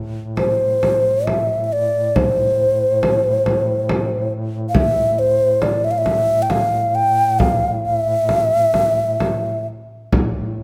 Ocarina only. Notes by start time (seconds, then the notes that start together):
0.37 C5
1.26 E5
1.64 E5
1.73 D5
2.16 C5
4.69 F5
4.76 E5
5.19 C5
5.63 D5
5.84 E5
5.91 F5
5.98 E5
6.42 G5
6.51 F5
6.95 G5
7.39 F5
7.85 F5
7.96 E5